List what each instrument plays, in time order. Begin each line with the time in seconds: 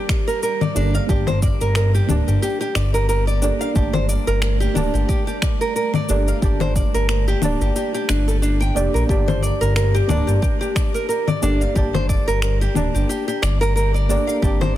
Already playing: singing bowl G3 G4, synth stab A#3 D4 G4 D5 A5
0.09 nylon-string guitar D5, finger snap, kick, cabasa
0.28 nylon-string guitar A#4, cabasa
0.43 nylon-string guitar A#4, cabasa
0.61 nylon-string guitar D5, low conga, cabasa
0.75 analog synth bass G1, synth stab A#3 D4 G4 A4 D5, nylon-string guitar D4, cabasa
0.94 nylon-string guitar F5, cabasa
1.07 analog synth bass G1, synth stab A#3 D4 G4 A5, nylon-string guitar G4, kick, cabasa
1.11 synth stab D5
1.27 nylon-string guitar C5, low conga, cabasa
1.42 nylon-string guitar D5, kick, cabasa
1.61 analog synth bass G1, nylon-string guitar A#4, cabasa
1.75 nylon-string guitar A#4, finger snap, cabasa
1.94 nylon-string guitar G4, cabasa
2.07 analog synth bass D1, synth stab A#3 D4 G4 A5, nylon-string guitar D4, low conga, cabasa
2.11 synth stab D5
2.28 analog synth bass G1, nylon-string guitar G4, cabasa
2.42 nylon-string guitar G4, cabasa
2.61 nylon-string guitar G4, cabasa
2.75 analog synth bass G1, nylon-string guitar D5, finger snap, cabasa
2.94 nylon-string guitar A#4, cabasa
3.09 nylon-string guitar A#4, cabasa
3.27 nylon-string guitar D5, cabasa
3.42 synth stab A#3 D4 G4 A4 D5, nylon-string guitar D4, cabasa
3.61 nylon-string guitar F5, cabasa
3.74 analog synth bass G1, singing bowl A3, synth stab A#3 D4 G4 A5, nylon-string guitar G4, kick, cabasa
3.78 synth stab D5
3.93 nylon-string guitar C5, low conga, cabasa
4.09 nylon-string guitar D5, cabasa
4.27 analog synth bass G1, nylon-string guitar A#4, cabasa
4.42 finger snap, cabasa
4.60 nylon-string guitar G4, cabasa
4.74 analog synth bass D1, synth stab A#3 D4 G4 A5, nylon-string guitar D4, low conga, cabasa
4.78 synth stab D5
4.94 analog synth bass G1, nylon-string guitar G4, cabasa
5.09 nylon-string guitar G4, kick, cabasa
5.27 nylon-string guitar G4, cabasa
5.42 nylon-string guitar D5, finger snap, kick, cabasa
5.61 nylon-string guitar A#4, cabasa
5.76 nylon-string guitar A#4, cabasa
5.94 nylon-string guitar D5, low conga, cabasa
6.08 analog synth bass G1, synth stab A#3 D4 G4 A4 D5, nylon-string guitar D4, cabasa
6.28 nylon-string guitar F5, cabasa
6.41 analog synth bass G1, synth stab A#3 D4 G4 D5 A5, nylon-string guitar G4, kick, cabasa
6.60 nylon-string guitar C5, low conga, cabasa
6.76 nylon-string guitar D5, kick, cabasa
6.94 analog synth bass G1, nylon-string guitar A#4, cabasa
7.09 nylon-string guitar A#4, finger snap, cabasa
7.28 nylon-string guitar G4, cabasa
7.41 analog synth bass D1, synth stab A#3 D4 G4 D5 A5, nylon-string guitar D4, low conga, cabasa
7.61 analog synth bass G1, nylon-string guitar G4, cabasa
7.76 nylon-string guitar G4, cabasa
7.94 nylon-string guitar G4, cabasa
8.09 analog synth bass G1, nylon-string guitar D4, finger snap, cabasa
8.28 nylon-string guitar A4, cabasa
8.42 nylon-string guitar D4, cabasa
8.61 analog synth bass G1, nylon-string guitar G5, cabasa
8.74 analog synth bass F1, synth stab A#3 D4 G4 A4 D5, nylon-string guitar G4, cabasa
8.94 analog synth bass A#1, nylon-string guitar A#4, cabasa
9.07 analog synth bass G1, synth stab A#3 D4 G4 A5, nylon-string guitar G4, singing bowl G4, kick, cabasa
9.11 synth stab D5
9.28 nylon-string guitar C5, low conga, cabasa
9.42 nylon-string guitar D5, cabasa
9.61 analog synth bass G1, nylon-string guitar A#4, cabasa
9.76 nylon-string guitar A#4, finger snap, cabasa
9.95 nylon-string guitar G4, cabasa
10.07 analog synth bass D1, synth stab A#3 D4 G4 D5 A5, nylon-string guitar D4, low conga, cabasa
10.27 analog synth bass G1, nylon-string guitar G4, cabasa
10.42 nylon-string guitar G4, kick, cabasa
10.61 nylon-string guitar G4, cabasa
10.76 nylon-string guitar D5, finger snap, kick, cabasa
10.94 nylon-string guitar A#4, cabasa
11.09 nylon-string guitar A#4, cabasa
11.28 nylon-string guitar D5, low conga, cabasa
11.42 analog synth bass G1, synth stab A#3 D4 G4 A4 D5, nylon-string guitar D4, cabasa
11.61 nylon-string guitar F5, cabasa
11.74 analog synth bass G1, synth stab A#3 D4 G4 A5, nylon-string guitar G4, kick, cabasa
11.78 synth stab D5
11.94 nylon-string guitar C5, low conga, cabasa
12.09 nylon-string guitar D5, kick, cabasa
12.28 analog synth bass G1, nylon-string guitar A#4, cabasa
12.42 nylon-string guitar A#4, finger snap, cabasa
12.61 nylon-string guitar G4, cabasa
12.74 analog synth bass D1, synth stab A#3 D4 G4 D5 A5, nylon-string guitar D4, low conga, cabasa
12.94 analog synth bass G1, nylon-string guitar G4, cabasa
13.09 nylon-string guitar G4, cabasa
13.28 nylon-string guitar G4, cabasa
13.42 analog synth bass G1, nylon-string guitar D5, finger snap, cabasa
13.61 nylon-string guitar A#4, cabasa
13.76 nylon-string guitar A#4, cabasa
13.94 nylon-string guitar D5, cabasa
14.08 synth stab A#3 D4 G4 A4 D5, nylon-string guitar D4, cabasa
14.27 nylon-string guitar F5, cabasa
14.41 analog synth bass G1, synth stab A#3 D4 G4 D5 A5, singing bowl C4, nylon-string guitar G4, kick, cabasa
14.61 nylon-string guitar C5, low conga, cabasa